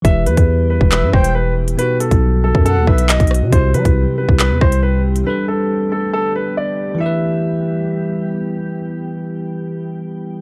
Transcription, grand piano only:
\new Staff \with { instrumentName = "Grand piano" } { \time 4/4 \key e \minor \tempo 4 = 138 e''8 b'4 b'8 b'8 c''8 b'8 r8 | b'8 a'4 a'8 a'8 b'8 dis''4 | c''8 b'4 b'8 b'8 c''8 b'8 r8 | b'8 a'4 a'8 a'8 b'8 d''4 |
e''2. r4 | r1 | }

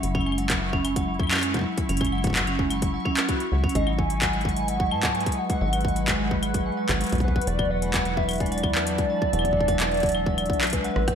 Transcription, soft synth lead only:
\new Staff \with { instrumentName = "Soft synth lead" } { \time 4/4 \key fis \minor \tempo 4 = 129 r1 | r1 | dis''8 gis''4. fis''8 a''8 gis''8 fis''8~ | fis''4. r2 b'8 |
d''8 fis''4 e''8 d''2~ | d''2. b'4 | }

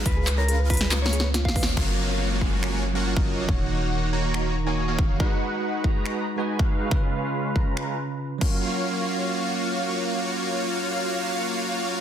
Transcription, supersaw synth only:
\new Staff \with { instrumentName = "Supersaw synth" } { \time 4/4 \key fis \major \tempo 4 = 140 <gis cis' eis' b' eis''>4. <gis cis' eis' b' ais''>4 r4. | <ais eis' fis' cis'' eis''>4. <ais eis' fis' cis'' gis''>4 r16 <ais eis' fis' cis'' fis''>8 <ais eis' fis' cis'' dis''>8. | <ais dis' fis' cis'' fis''>4. <ais dis' fis' cis'' ais''>4 r16 <ais dis' fis' cis'' gis''>8 <ais dis' fis' cis'' eis''>8. | <gis dis' fis' b' fis''>4. <gis dis' fis' b' ais''>4 r16 <gis dis' fis' b' gis''>8 <gis dis' fis' b' eis''>8. |
<gis cis' eis' b' eis''>4. <gis cis' eis' b' ais''>4 r4 <ais eis' fis' cis'' eis''>8~ | <ais eis' fis' cis'' eis''>1~ | <ais eis' fis' cis'' eis''>1 | }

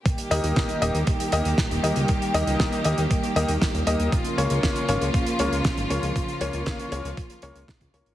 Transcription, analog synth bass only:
\new Staff \with { instrumentName = "Analog synth bass" } { \clef bass \time 4/4 \key ees \mixolydian \tempo 4 = 118 r8 ees,16 ees,16 r8 ees,,16 ees,16 r8 ees,16 ees,16 r16 ees,,16 ees,16 des,16 | r8 ees,16 des,16 r8 ees,16 ees,16 r8 ees,16 ees,16 r16 ees,16 ees,16 ees,16 | r8 des,16 des,16 r8 aes,,16 des,16 r8 des,16 des,16 r16 aes,,16 des,16 des,16 | r8 des,16 des,16 r8 des,16 des,16 r8 des,16 des,16 r16 des,16 des,16 aes,,16 | }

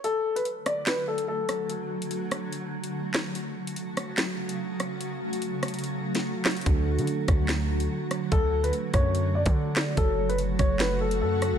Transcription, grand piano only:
\new Staff \with { instrumentName = "Grand piano" } { \time 4/4 \key d \lydian \tempo 4 = 145 a'8. b'16 r8 d''8 b'8 a'8 a'4 | r1 | r1 | r1 |
r1 | a'8. b'16 r8 cis''4 d''4. | a'8. b'16 r8 cis''8 b'8 a'8 a'4 | }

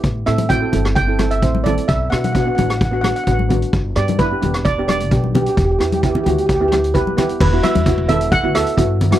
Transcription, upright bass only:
\new Staff \with { instrumentName = "Upright bass" } { \clef bass \time 4/4 \key e \minor \tempo 4 = 130 a,,8 a,4 g,,4. a,,4 | b,,8 b,4 a,,4. a,,4 | g,,8 g,4 e,,4. b,,4 | e,,8 e,4 d,4. e,,4 |
e,,8 r16 e,8 e,,4 d,8 r16 g,4 | }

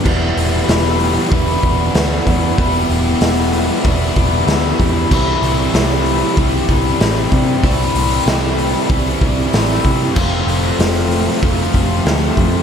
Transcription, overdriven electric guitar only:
\new Staff \with { instrumentName = "Overdriven electric guitar" } { \clef bass \time 4/4 \key c \major \tempo 4 = 95 <e, b, e g b e'>2 <e, b, e g b e'>2 | <e, b, e g b e'>2 <e, b, e g b e'>2 | <c e g c' e'>2 <c e g c' e'>2 | <c e g c' e'>2 <c e g c' e'>2 |
<f, c f a c' f'>2 <f, c f a c' f'>2 | }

